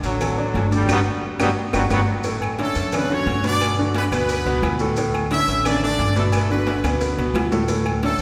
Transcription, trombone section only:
0.05 D3 F#3
0.73 D3 G3
0.90 F#3 G3 B3
1.41 F#3 G3 B3
1.75 F#3 G3 B3
1.92 F#3 G3 B3

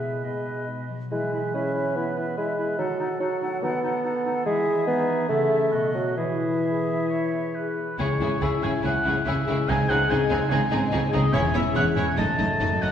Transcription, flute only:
Already playing: E5
0.24 D#5
1.12 E5
1.33 E5
1.55 E5
1.76 E5
1.97 E5
2.17 E5
2.37 E5
2.57 E5
2.79 F#5
2.99 F#5
3.20 F#5
3.41 F#5
3.62 F#5
3.83 F#5
4.04 F#5
4.25 F#5
4.46 E5
4.88 E5
5.29 E5
5.73 D#5
6.18 E5

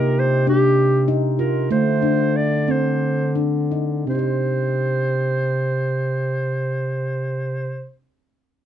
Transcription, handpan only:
Already playing: D#4
0.47 D4
1.08 D#4
1.39 F4
1.71 A3
2.02 D4
2.68 C4
3.35 D4
3.71 D#4
4.07 C4 D#4
4.15 G4 C5

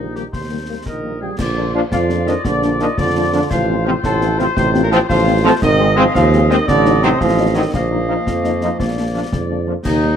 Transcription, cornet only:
Already playing: D#4
0.87 D#5
1.22 G5
1.40 D5
1.75 F5
1.92 F5
2.28 D#5
2.45 D5
2.82 D#5
2.99 D5
3.34 D5
3.50 F5
3.86 C5
4.05 A4
4.39 C5
4.58 C5
4.83 A#4
4.91 A4
5.09 F5
5.46 A5
5.62 D#5
5.98 F5
6.15 F5
6.51 D#5
6.68 D5
7.03 C5
7.20 F5
7.55 D#5
7.73 F5
9.85 D#4

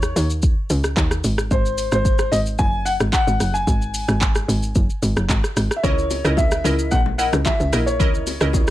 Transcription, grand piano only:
Already playing: C#5
1.51 C5
1.92 C5
2.32 D#5
2.59 G#5
2.85 F#5
3.12 F#5
3.54 G#5
5.76 E5
5.83 C#5
6.37 E5
6.91 F#5
7.18 F#5
7.45 E5
7.86 C#5

